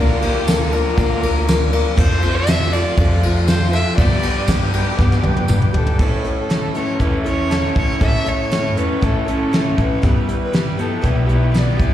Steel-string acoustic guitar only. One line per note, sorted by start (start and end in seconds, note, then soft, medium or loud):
0.00 0.22 D3 medium
0.00 0.22 F3 medium
0.00 0.23 A#3 medium
0.00 0.23 D4 medium
0.00 0.21 A#4 medium
0.22 0.47 A#3 soft
0.22 0.47 D4 soft
0.22 0.47 A#4 soft
0.47 0.72 F3 medium
0.47 0.72 A#3 medium
0.47 0.72 D4 medium
0.47 0.71 A#4 medium
0.72 0.96 A#3 soft
0.72 0.97 D4 soft
0.72 0.97 A#4 medium
0.96 1.22 D3 medium
0.96 1.22 F3 medium
0.96 1.22 A#3 medium
0.96 1.22 D4 medium
0.96 1.20 A#4 medium
1.21 1.46 A#3 soft
1.21 1.47 D4 soft
1.21 1.47 A#4 medium
1.45 1.71 F3 medium
1.45 1.72 A#3 medium
1.45 1.71 D4 medium
1.45 1.70 A#4 medium
1.71 1.96 A#3 soft
1.71 1.97 D4 medium
1.71 1.97 A#4 medium
1.96 2.22 F3 medium
1.96 2.22 C4 medium
1.96 2.22 F4 medium
1.96 2.20 A4 medium
2.21 2.47 C4 soft
2.21 2.47 F4 soft
2.21 2.47 A4 medium
2.46 2.72 F3 medium
2.46 2.73 C4 medium
2.46 2.73 F4 medium
2.46 2.72 A4 medium
2.73 2.98 C4 soft
2.73 2.99 F4 soft
2.73 2.98 A4 medium
2.99 3.23 F3 medium
2.99 3.24 C4 medium
2.99 3.24 F4 medium
2.99 3.22 A4 medium
3.23 3.49 C4 soft
3.23 3.49 F4 soft
3.23 3.48 A4 medium
3.49 3.74 F3 medium
3.49 3.74 C4 medium
3.49 3.74 F4 medium
3.49 3.72 A4 medium
3.74 4.00 C4 soft
3.74 3.99 F4 soft
3.74 3.99 A4 soft
3.99 4.24 G2 medium
3.99 4.24 D3 medium
3.99 4.24 G3 medium
3.99 4.25 B3 medium
3.99 4.25 D4 medium
3.99 4.24 G4 loud
4.25 4.48 G3 soft
4.25 4.49 B3 soft
4.25 4.50 D4 soft
4.25 4.49 G4 medium
4.49 4.74 G3 medium
4.49 4.74 B3 medium
4.49 4.73 D4 medium
4.49 4.72 G4 medium
4.73 4.98 G3 soft
4.73 4.99 B3 medium
4.73 4.99 D4 soft
4.73 4.99 G4 medium
4.98 5.24 G2 medium
4.98 5.24 D3 medium
4.98 5.24 G3 medium
4.98 5.24 B3 medium
4.98 5.22 D4 medium
4.98 5.21 G4 medium
5.22 5.46 G3 medium
5.22 5.48 B3 medium
5.22 5.49 D4 medium
5.22 5.48 G4 medium
5.47 5.74 G3 medium
5.47 5.74 B3 medium
5.47 5.74 D4 medium
5.47 5.72 G4 medium
5.73 5.99 G3 soft
5.73 6.00 B3 soft
5.73 6.00 D4 soft
5.73 5.99 G4 medium
5.99 6.24 A2 medium
5.99 6.25 E3 medium
5.99 6.25 A3 medium
5.99 6.25 C#4 medium
5.99 6.24 E4 medium
5.99 6.23 A4 medium
6.24 6.48 A3 soft
6.24 6.50 C#4 soft
6.24 6.50 E4 soft
6.24 6.50 A4 soft
6.49 6.75 A3 soft
6.49 6.75 C#4 medium
6.49 6.74 E4 medium
6.49 6.73 A4 medium
6.74 6.99 A3 soft
6.74 7.00 C#4 soft
6.74 7.00 E4 soft
6.74 7.00 A4 medium
6.99 7.25 A2 medium
6.99 7.25 E3 medium
6.99 7.26 A3 medium
6.99 7.25 C#4 medium
6.99 7.25 E4 medium
6.99 7.23 A4 medium
7.24 7.49 A3 soft
7.24 7.50 C#4 soft
7.24 7.51 E4 soft
7.24 7.50 A4 soft
7.50 7.76 A3 soft
7.50 7.76 C#4 medium
7.50 7.75 E4 medium
7.50 7.74 A4 medium
7.75 8.00 A3 soft
7.75 8.00 C#4 soft
7.75 8.00 E4 soft
7.75 8.01 A4 soft
8.00 8.26 A2 medium
8.00 8.26 E3 medium
8.00 8.27 A3 medium
8.00 8.27 C#4 medium
8.00 8.26 E4 medium
8.00 8.24 A4 medium
8.25 8.49 A3 soft
8.25 8.51 C#4 soft
8.25 8.51 E4 soft
8.25 8.51 A4 soft
8.50 8.76 A3 soft
8.50 8.77 C#4 medium
8.50 8.76 E4 medium
8.50 8.75 A4 medium
8.76 9.01 A3 soft
8.76 9.02 C#4 soft
8.76 9.02 E4 soft
8.76 9.02 A4 medium
9.01 9.27 A2 medium
9.01 9.27 E3 medium
9.01 9.28 A3 medium
9.01 9.27 C#4 medium
9.01 9.27 E4 medium
9.01 9.25 A4 medium
9.26 9.50 A3 soft
9.26 9.51 C#4 soft
9.26 9.52 E4 soft
9.26 9.52 A4 soft
9.52 9.78 A3 medium
9.52 9.77 C#4 medium
9.52 9.76 E4 medium
9.52 9.75 A4 medium
9.77 10.03 A3 soft
9.77 10.03 C#4 soft
9.77 10.02 E4 soft
9.77 10.03 A4 soft
10.02 10.28 G2 medium
10.02 10.28 E3 medium
10.02 10.29 G3 medium
10.02 10.29 B3 medium
10.02 10.27 E4 medium
10.02 10.26 G4 medium
10.28 10.51 G3 soft
10.28 10.52 B3 soft
10.28 10.53 E4 soft
10.28 10.53 G4 soft
10.52 10.78 G3 soft
10.52 10.79 B3 medium
10.52 10.78 E4 medium
10.52 10.76 G4 medium
10.77 11.01 G3 soft
10.77 11.01 B3 soft
10.77 11.02 E4 soft
10.77 11.02 G4 medium
11.01 11.28 G2 medium
11.01 11.28 E3 medium
11.01 11.29 G3 medium
11.01 11.28 B3 medium
11.01 11.27 E4 medium
11.01 11.26 G4 medium
11.27 11.51 G3 soft
11.27 11.53 B3 soft
11.27 11.53 E4 soft
11.27 11.54 G4 medium
11.52 11.79 G3 medium
11.52 11.78 B3 soft
11.52 11.78 E4 medium
11.52 11.76 G4 medium
11.77 11.94 G3 soft
11.77 11.94 B3 soft
11.77 11.94 E4 soft
11.77 11.94 G4 soft